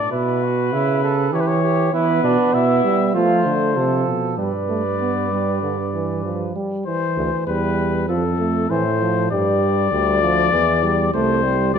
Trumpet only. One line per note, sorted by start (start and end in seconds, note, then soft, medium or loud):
0.00 0.10 D5 medium
0.12 1.31 B4 medium
1.33 1.42 C#5 medium
1.41 1.49 B4 medium
1.47 1.93 C#5 medium
1.94 2.56 B4 medium
2.54 3.15 E5 medium
3.15 4.08 C5 medium
4.38 6.52 D5 medium
6.86 7.43 C5 medium
7.47 8.07 B4 medium
8.09 8.72 A4 medium
8.70 9.31 C5 medium
9.31 11.10 D5 loud
11.14 11.73 C5 medium
11.74 11.79 D5 medium